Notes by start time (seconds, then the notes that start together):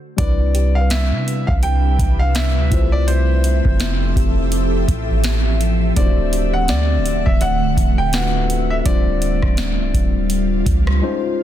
0.16 C2 C3 G3 C4 D4 E4 B4 D5 E5, kick, closed hi-hat
0.21 B4
0.55 G4, closed hi-hat
0.75 F5
0.81 B4
0.90 E5, snare, closed hi-hat
1.11 C3
1.28 closed hi-hat
1.47 C2 F5, kick
1.63 G5, closed hi-hat
1.99 C2, kick, closed hi-hat
2.19 F5
2.35 D4 E5, snare, closed hi-hat
2.57 D2
2.62 G4
2.70 C2 F3 A3 C4 E4 F4 G4 A4, kick, closed hi-hat
2.74 C5
2.82 A4
2.92 D5
3.08 C5, closed hi-hat
3.44 closed hi-hat
3.65 F1, kick
3.80 snare, closed hi-hat
4.16 F1 G4, kick, closed hi-hat
4.52 closed hi-hat
4.88 A1, kick, closed hi-hat
5.24 snare, closed hi-hat
5.61 closed hi-hat
5.96 D1 D3 A3 C4 D4 E4 D5 F#5, kick, closed hi-hat
6.00 C5
6.05 F#4
6.33 closed hi-hat
6.53 F#5
6.68 D2 D5, snare, closed hi-hat
6.97 D1
7.06 closed hi-hat
7.26 D1 E5, kick
7.41 D5 F#5, closed hi-hat
7.62 C1
7.77 D1, kick, closed hi-hat
7.98 G5
8.13 A3 C4 D4 F4 B4 F#5, snare, closed hi-hat
8.21 F#4
8.50 closed hi-hat
8.70 E5
8.79 E5
8.84 D1 G3 C4 D4 F4 D5, kick, closed hi-hat
8.89 C5
9.22 closed hi-hat
9.42 D1, kick, cross-stick
9.57 snare, closed hi-hat
9.78 C1
9.94 D1, kick, closed hi-hat
10.30 closed hi-hat
10.66 C#2, kick, closed hi-hat
10.87 cross-stick
11.02 G#3 C#4 D#4 F4 C5